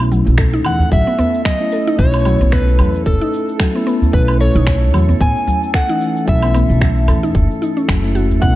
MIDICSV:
0, 0, Header, 1, 8, 480
1, 0, Start_track
1, 0, Tempo, 535714
1, 1783, Time_signature, 4, 2, 24, 8
1, 7665, End_track
2, 0, Start_track
2, 0, Title_t, "Electric slide guitar"
2, 0, Program_c, 0, 29
2, 593, Note_on_c, 0, 78, 100
2, 812, Note_off_c, 0, 78, 0
2, 831, Note_on_c, 0, 76, 100
2, 1297, Note_off_c, 0, 76, 0
2, 1300, Note_on_c, 0, 75, 97
2, 1780, Note_on_c, 0, 73, 100
2, 1796, Note_off_c, 0, 75, 0
2, 2263, Note_on_c, 0, 71, 87
2, 2276, Note_off_c, 0, 73, 0
2, 2744, Note_off_c, 0, 71, 0
2, 2747, Note_on_c, 0, 69, 80
2, 3192, Note_off_c, 0, 69, 0
2, 3708, Note_on_c, 0, 71, 91
2, 3945, Note_off_c, 0, 71, 0
2, 3949, Note_on_c, 0, 73, 93
2, 4672, Note_on_c, 0, 80, 109
2, 4688, Note_off_c, 0, 73, 0
2, 5114, Note_off_c, 0, 80, 0
2, 5154, Note_on_c, 0, 78, 99
2, 5596, Note_off_c, 0, 78, 0
2, 5635, Note_on_c, 0, 76, 92
2, 6553, Note_off_c, 0, 76, 0
2, 7541, Note_on_c, 0, 78, 98
2, 7665, Note_off_c, 0, 78, 0
2, 7665, End_track
3, 0, Start_track
3, 0, Title_t, "Synth texture"
3, 0, Program_c, 1, 99
3, 0, Note_on_c, 1, 69, 80
3, 7665, Note_off_c, 1, 69, 0
3, 7665, End_track
4, 0, Start_track
4, 0, Title_t, "Tine electric piano"
4, 0, Program_c, 2, 4
4, 0, Note_on_c, 2, 57, 95
4, 0, Note_on_c, 2, 61, 88
4, 0, Note_on_c, 2, 64, 97
4, 52, Control_c, 2, 64, 127
4, 1269, Note_off_c, 2, 57, 0
4, 1277, Note_off_c, 2, 61, 0
4, 1285, Note_off_c, 2, 64, 0
4, 1428, Note_on_c, 2, 57, 76
4, 1436, Note_on_c, 2, 61, 74
4, 1444, Note_on_c, 2, 64, 93
4, 1750, Note_off_c, 2, 57, 0
4, 1757, Note_off_c, 2, 61, 0
4, 1760, Note_on_c, 2, 57, 89
4, 1761, Note_off_c, 2, 64, 0
4, 1780, Note_on_c, 2, 61, 87
4, 1796, Note_on_c, 2, 64, 110
4, 3187, Note_off_c, 2, 57, 0
4, 3196, Note_off_c, 2, 61, 0
4, 3204, Note_off_c, 2, 64, 0
4, 3347, Note_on_c, 2, 57, 81
4, 3357, Note_on_c, 2, 61, 75
4, 3366, Note_on_c, 2, 64, 86
4, 3673, Note_off_c, 2, 57, 0
4, 3677, Note_off_c, 2, 61, 0
4, 3682, Note_off_c, 2, 64, 0
4, 3683, Note_on_c, 2, 57, 93
4, 3702, Note_on_c, 2, 61, 92
4, 3720, Note_on_c, 2, 64, 103
4, 5108, Note_off_c, 2, 57, 0
4, 5118, Note_off_c, 2, 61, 0
4, 5127, Note_off_c, 2, 64, 0
4, 5266, Note_on_c, 2, 57, 77
4, 5273, Note_on_c, 2, 61, 74
4, 5283, Note_on_c, 2, 52, 92
4, 5592, Note_off_c, 2, 57, 0
4, 5595, Note_off_c, 2, 61, 0
4, 5600, Note_off_c, 2, 52, 0
4, 5601, Note_on_c, 2, 57, 87
4, 5618, Note_on_c, 2, 61, 87
4, 5636, Note_on_c, 2, 64, 109
4, 7027, Note_off_c, 2, 57, 0
4, 7036, Note_off_c, 2, 61, 0
4, 7045, Note_off_c, 2, 64, 0
4, 7187, Note_on_c, 2, 57, 81
4, 7197, Note_on_c, 2, 61, 71
4, 7206, Note_on_c, 2, 64, 84
4, 7512, Note_off_c, 2, 57, 0
4, 7518, Note_off_c, 2, 61, 0
4, 7522, Note_off_c, 2, 64, 0
4, 7525, Note_on_c, 2, 57, 91
4, 7544, Note_on_c, 2, 61, 90
4, 7560, Note_on_c, 2, 64, 106
4, 7665, Note_off_c, 2, 57, 0
4, 7665, Note_off_c, 2, 61, 0
4, 7665, Note_off_c, 2, 64, 0
4, 7665, End_track
5, 0, Start_track
5, 0, Title_t, "Synth pluck"
5, 0, Program_c, 3, 84
5, 0, Note_on_c, 3, 59, 99
5, 94, Note_off_c, 3, 59, 0
5, 104, Note_on_c, 3, 54, 82
5, 232, Note_off_c, 3, 54, 0
5, 345, Note_on_c, 3, 69, 83
5, 473, Note_off_c, 3, 69, 0
5, 479, Note_on_c, 3, 63, 100
5, 813, Note_off_c, 3, 63, 0
5, 825, Note_on_c, 3, 54, 72
5, 946, Note_off_c, 3, 54, 0
5, 961, Note_on_c, 3, 59, 81
5, 1052, Note_off_c, 3, 59, 0
5, 1062, Note_on_c, 3, 59, 108
5, 1292, Note_off_c, 3, 59, 0
5, 1303, Note_on_c, 3, 54, 82
5, 1432, Note_off_c, 3, 54, 0
5, 1544, Note_on_c, 3, 69, 75
5, 1672, Note_off_c, 3, 69, 0
5, 1680, Note_on_c, 3, 63, 101
5, 2013, Note_off_c, 3, 63, 0
5, 2023, Note_on_c, 3, 54, 79
5, 2145, Note_off_c, 3, 54, 0
5, 2159, Note_on_c, 3, 59, 78
5, 2251, Note_off_c, 3, 59, 0
5, 2262, Note_on_c, 3, 59, 100
5, 2492, Note_off_c, 3, 59, 0
5, 2506, Note_on_c, 3, 54, 78
5, 2633, Note_off_c, 3, 54, 0
5, 2744, Note_on_c, 3, 69, 79
5, 2872, Note_off_c, 3, 69, 0
5, 2880, Note_on_c, 3, 63, 104
5, 3214, Note_off_c, 3, 63, 0
5, 3225, Note_on_c, 3, 54, 78
5, 3346, Note_off_c, 3, 54, 0
5, 3364, Note_on_c, 3, 59, 81
5, 3454, Note_off_c, 3, 59, 0
5, 3464, Note_on_c, 3, 59, 107
5, 3693, Note_off_c, 3, 59, 0
5, 3705, Note_on_c, 3, 54, 77
5, 3832, Note_off_c, 3, 54, 0
5, 3946, Note_on_c, 3, 69, 80
5, 4073, Note_off_c, 3, 69, 0
5, 4083, Note_on_c, 3, 63, 107
5, 4415, Note_off_c, 3, 63, 0
5, 4424, Note_on_c, 3, 54, 72
5, 4545, Note_off_c, 3, 54, 0
5, 4560, Note_on_c, 3, 59, 74
5, 4657, Note_off_c, 3, 59, 0
5, 4668, Note_on_c, 3, 59, 93
5, 4895, Note_off_c, 3, 59, 0
5, 4906, Note_on_c, 3, 54, 75
5, 5033, Note_off_c, 3, 54, 0
5, 5146, Note_on_c, 3, 69, 80
5, 5273, Note_off_c, 3, 69, 0
5, 5281, Note_on_c, 3, 63, 101
5, 5614, Note_off_c, 3, 63, 0
5, 5626, Note_on_c, 3, 54, 84
5, 5746, Note_off_c, 3, 54, 0
5, 5761, Note_on_c, 3, 59, 74
5, 5854, Note_off_c, 3, 59, 0
5, 5865, Note_on_c, 3, 59, 103
5, 6093, Note_off_c, 3, 59, 0
5, 6106, Note_on_c, 3, 54, 82
5, 6233, Note_off_c, 3, 54, 0
5, 6344, Note_on_c, 3, 69, 76
5, 6472, Note_off_c, 3, 69, 0
5, 6481, Note_on_c, 3, 63, 91
5, 6814, Note_off_c, 3, 63, 0
5, 6827, Note_on_c, 3, 63, 78
5, 6902, Note_off_c, 3, 63, 0
5, 6960, Note_on_c, 3, 61, 73
5, 7054, Note_off_c, 3, 61, 0
5, 7067, Note_on_c, 3, 54, 85
5, 7142, Note_off_c, 3, 54, 0
5, 7304, Note_on_c, 3, 66, 97
5, 7432, Note_off_c, 3, 66, 0
5, 7543, Note_on_c, 3, 59, 95
5, 7665, Note_off_c, 3, 59, 0
5, 7665, End_track
6, 0, Start_track
6, 0, Title_t, "Upright bass"
6, 0, Program_c, 4, 32
6, 0, Note_on_c, 4, 35, 97
6, 163, Note_off_c, 4, 35, 0
6, 238, Note_on_c, 4, 35, 81
6, 582, Note_off_c, 4, 35, 0
6, 582, Note_on_c, 4, 40, 92
6, 751, Note_off_c, 4, 40, 0
6, 822, Note_on_c, 4, 33, 88
6, 912, Note_off_c, 4, 33, 0
6, 1781, Note_on_c, 4, 35, 104
6, 2083, Note_off_c, 4, 35, 0
6, 2157, Note_on_c, 4, 35, 90
6, 2501, Note_on_c, 4, 40, 87
6, 2514, Note_off_c, 4, 35, 0
6, 2743, Note_on_c, 4, 30, 91
6, 2756, Note_off_c, 4, 40, 0
6, 2832, Note_off_c, 4, 30, 0
6, 3704, Note_on_c, 4, 35, 94
6, 4005, Note_off_c, 4, 35, 0
6, 4078, Note_on_c, 4, 35, 91
6, 4426, Note_off_c, 4, 35, 0
6, 4426, Note_on_c, 4, 40, 90
6, 4593, Note_off_c, 4, 40, 0
6, 4663, Note_on_c, 4, 33, 92
6, 4752, Note_off_c, 4, 33, 0
6, 5625, Note_on_c, 4, 35, 99
6, 5925, Note_off_c, 4, 35, 0
6, 5999, Note_on_c, 4, 35, 83
6, 6344, Note_on_c, 4, 40, 89
6, 6357, Note_off_c, 4, 35, 0
6, 6584, Note_on_c, 4, 30, 92
6, 6597, Note_off_c, 4, 40, 0
6, 6672, Note_off_c, 4, 30, 0
6, 7064, Note_on_c, 4, 30, 79
6, 7486, Note_off_c, 4, 30, 0
6, 7546, Note_on_c, 4, 35, 96
6, 7665, Note_off_c, 4, 35, 0
6, 7665, End_track
7, 0, Start_track
7, 0, Title_t, "Udu"
7, 709, Note_on_c, 9, 64, 84
7, 799, Note_off_c, 9, 64, 0
7, 1067, Note_on_c, 9, 64, 104
7, 1156, Note_off_c, 9, 64, 0
7, 3600, Note_on_c, 9, 64, 101
7, 3690, Note_off_c, 9, 64, 0
7, 4558, Note_on_c, 9, 64, 81
7, 4648, Note_off_c, 9, 64, 0
7, 4903, Note_on_c, 9, 64, 95
7, 4993, Note_off_c, 9, 64, 0
7, 7445, Note_on_c, 9, 64, 96
7, 7534, Note_off_c, 9, 64, 0
7, 7665, End_track
8, 0, Start_track
8, 0, Title_t, "Drums"
8, 6, Note_on_c, 9, 82, 22
8, 96, Note_off_c, 9, 82, 0
8, 106, Note_on_c, 9, 82, 69
8, 196, Note_off_c, 9, 82, 0
8, 241, Note_on_c, 9, 82, 34
8, 331, Note_off_c, 9, 82, 0
8, 338, Note_on_c, 9, 26, 102
8, 343, Note_on_c, 9, 36, 109
8, 346, Note_on_c, 9, 82, 42
8, 428, Note_off_c, 9, 26, 0
8, 432, Note_off_c, 9, 36, 0
8, 436, Note_off_c, 9, 82, 0
8, 482, Note_on_c, 9, 82, 22
8, 572, Note_off_c, 9, 82, 0
8, 578, Note_on_c, 9, 77, 76
8, 587, Note_on_c, 9, 82, 76
8, 668, Note_off_c, 9, 77, 0
8, 676, Note_off_c, 9, 82, 0
8, 725, Note_on_c, 9, 82, 35
8, 814, Note_off_c, 9, 82, 0
8, 822, Note_on_c, 9, 36, 101
8, 827, Note_on_c, 9, 82, 43
8, 912, Note_off_c, 9, 36, 0
8, 917, Note_off_c, 9, 82, 0
8, 966, Note_on_c, 9, 82, 20
8, 1055, Note_off_c, 9, 82, 0
8, 1068, Note_on_c, 9, 82, 76
8, 1158, Note_off_c, 9, 82, 0
8, 1205, Note_on_c, 9, 82, 34
8, 1295, Note_off_c, 9, 82, 0
8, 1301, Note_on_c, 9, 26, 114
8, 1302, Note_on_c, 9, 36, 107
8, 1309, Note_on_c, 9, 82, 49
8, 1391, Note_off_c, 9, 26, 0
8, 1391, Note_off_c, 9, 36, 0
8, 1399, Note_off_c, 9, 82, 0
8, 1443, Note_on_c, 9, 82, 21
8, 1532, Note_off_c, 9, 82, 0
8, 1546, Note_on_c, 9, 82, 76
8, 1635, Note_off_c, 9, 82, 0
8, 1683, Note_on_c, 9, 82, 34
8, 1772, Note_off_c, 9, 82, 0
8, 1782, Note_on_c, 9, 36, 115
8, 1787, Note_on_c, 9, 82, 46
8, 1872, Note_off_c, 9, 36, 0
8, 1877, Note_off_c, 9, 82, 0
8, 1915, Note_on_c, 9, 77, 82
8, 1923, Note_on_c, 9, 82, 25
8, 2005, Note_off_c, 9, 77, 0
8, 2013, Note_off_c, 9, 82, 0
8, 2019, Note_on_c, 9, 77, 53
8, 2027, Note_on_c, 9, 82, 75
8, 2108, Note_off_c, 9, 77, 0
8, 2117, Note_off_c, 9, 82, 0
8, 2165, Note_on_c, 9, 82, 37
8, 2254, Note_off_c, 9, 82, 0
8, 2260, Note_on_c, 9, 26, 96
8, 2263, Note_on_c, 9, 36, 113
8, 2268, Note_on_c, 9, 82, 43
8, 2350, Note_off_c, 9, 26, 0
8, 2352, Note_off_c, 9, 36, 0
8, 2358, Note_off_c, 9, 82, 0
8, 2402, Note_on_c, 9, 82, 23
8, 2491, Note_off_c, 9, 82, 0
8, 2498, Note_on_c, 9, 77, 80
8, 2506, Note_on_c, 9, 82, 76
8, 2588, Note_off_c, 9, 77, 0
8, 2596, Note_off_c, 9, 82, 0
8, 2646, Note_on_c, 9, 82, 34
8, 2735, Note_off_c, 9, 82, 0
8, 2743, Note_on_c, 9, 36, 102
8, 2749, Note_on_c, 9, 82, 46
8, 2832, Note_off_c, 9, 36, 0
8, 2839, Note_off_c, 9, 82, 0
8, 2884, Note_on_c, 9, 82, 22
8, 2973, Note_off_c, 9, 82, 0
8, 2991, Note_on_c, 9, 82, 75
8, 3080, Note_off_c, 9, 82, 0
8, 3125, Note_on_c, 9, 82, 35
8, 3215, Note_off_c, 9, 82, 0
8, 3222, Note_on_c, 9, 26, 115
8, 3224, Note_on_c, 9, 36, 104
8, 3230, Note_on_c, 9, 82, 49
8, 3312, Note_off_c, 9, 26, 0
8, 3313, Note_off_c, 9, 36, 0
8, 3320, Note_off_c, 9, 82, 0
8, 3369, Note_on_c, 9, 82, 24
8, 3459, Note_off_c, 9, 82, 0
8, 3472, Note_on_c, 9, 82, 78
8, 3562, Note_off_c, 9, 82, 0
8, 3609, Note_on_c, 9, 82, 35
8, 3699, Note_off_c, 9, 82, 0
8, 3704, Note_on_c, 9, 36, 114
8, 3712, Note_on_c, 9, 82, 46
8, 3793, Note_off_c, 9, 36, 0
8, 3802, Note_off_c, 9, 82, 0
8, 3837, Note_on_c, 9, 77, 76
8, 3845, Note_on_c, 9, 82, 23
8, 3927, Note_off_c, 9, 77, 0
8, 3935, Note_off_c, 9, 82, 0
8, 3952, Note_on_c, 9, 82, 77
8, 4041, Note_off_c, 9, 82, 0
8, 4087, Note_on_c, 9, 82, 38
8, 4177, Note_off_c, 9, 82, 0
8, 4181, Note_on_c, 9, 26, 102
8, 4184, Note_on_c, 9, 36, 116
8, 4189, Note_on_c, 9, 82, 48
8, 4271, Note_off_c, 9, 26, 0
8, 4274, Note_off_c, 9, 36, 0
8, 4279, Note_off_c, 9, 82, 0
8, 4328, Note_on_c, 9, 82, 23
8, 4418, Note_off_c, 9, 82, 0
8, 4426, Note_on_c, 9, 77, 75
8, 4434, Note_on_c, 9, 82, 80
8, 4516, Note_off_c, 9, 77, 0
8, 4524, Note_off_c, 9, 82, 0
8, 4567, Note_on_c, 9, 82, 34
8, 4656, Note_off_c, 9, 82, 0
8, 4664, Note_on_c, 9, 36, 105
8, 4671, Note_on_c, 9, 82, 48
8, 4754, Note_off_c, 9, 36, 0
8, 4761, Note_off_c, 9, 82, 0
8, 4805, Note_on_c, 9, 82, 22
8, 4894, Note_off_c, 9, 82, 0
8, 4908, Note_on_c, 9, 82, 77
8, 4998, Note_off_c, 9, 82, 0
8, 5045, Note_on_c, 9, 82, 34
8, 5135, Note_off_c, 9, 82, 0
8, 5142, Note_on_c, 9, 26, 107
8, 5144, Note_on_c, 9, 36, 114
8, 5150, Note_on_c, 9, 82, 50
8, 5231, Note_off_c, 9, 26, 0
8, 5234, Note_off_c, 9, 36, 0
8, 5240, Note_off_c, 9, 82, 0
8, 5284, Note_on_c, 9, 82, 23
8, 5374, Note_off_c, 9, 82, 0
8, 5386, Note_on_c, 9, 82, 80
8, 5475, Note_off_c, 9, 82, 0
8, 5525, Note_on_c, 9, 82, 36
8, 5615, Note_off_c, 9, 82, 0
8, 5624, Note_on_c, 9, 36, 116
8, 5631, Note_on_c, 9, 82, 43
8, 5714, Note_off_c, 9, 36, 0
8, 5721, Note_off_c, 9, 82, 0
8, 5757, Note_on_c, 9, 77, 81
8, 5765, Note_on_c, 9, 82, 23
8, 5847, Note_off_c, 9, 77, 0
8, 5855, Note_off_c, 9, 82, 0
8, 5864, Note_on_c, 9, 77, 54
8, 5872, Note_on_c, 9, 82, 75
8, 5953, Note_off_c, 9, 77, 0
8, 5962, Note_off_c, 9, 82, 0
8, 6008, Note_on_c, 9, 82, 35
8, 6098, Note_off_c, 9, 82, 0
8, 6105, Note_on_c, 9, 36, 113
8, 6107, Note_on_c, 9, 26, 91
8, 6116, Note_on_c, 9, 82, 47
8, 6195, Note_off_c, 9, 36, 0
8, 6197, Note_off_c, 9, 26, 0
8, 6205, Note_off_c, 9, 82, 0
8, 6252, Note_on_c, 9, 82, 23
8, 6341, Note_off_c, 9, 82, 0
8, 6344, Note_on_c, 9, 77, 73
8, 6352, Note_on_c, 9, 82, 81
8, 6434, Note_off_c, 9, 77, 0
8, 6442, Note_off_c, 9, 82, 0
8, 6489, Note_on_c, 9, 82, 35
8, 6579, Note_off_c, 9, 82, 0
8, 6585, Note_on_c, 9, 36, 102
8, 6594, Note_on_c, 9, 82, 48
8, 6674, Note_off_c, 9, 36, 0
8, 6684, Note_off_c, 9, 82, 0
8, 6730, Note_on_c, 9, 82, 23
8, 6819, Note_off_c, 9, 82, 0
8, 6833, Note_on_c, 9, 82, 82
8, 6923, Note_off_c, 9, 82, 0
8, 6970, Note_on_c, 9, 82, 36
8, 7059, Note_off_c, 9, 82, 0
8, 7065, Note_on_c, 9, 36, 107
8, 7067, Note_on_c, 9, 26, 107
8, 7075, Note_on_c, 9, 82, 52
8, 7155, Note_off_c, 9, 36, 0
8, 7157, Note_off_c, 9, 26, 0
8, 7165, Note_off_c, 9, 82, 0
8, 7209, Note_on_c, 9, 82, 22
8, 7299, Note_off_c, 9, 82, 0
8, 7312, Note_on_c, 9, 82, 77
8, 7402, Note_off_c, 9, 82, 0
8, 7448, Note_on_c, 9, 82, 34
8, 7538, Note_off_c, 9, 82, 0
8, 7546, Note_on_c, 9, 36, 107
8, 7555, Note_on_c, 9, 82, 42
8, 7636, Note_off_c, 9, 36, 0
8, 7644, Note_off_c, 9, 82, 0
8, 7665, End_track
0, 0, End_of_file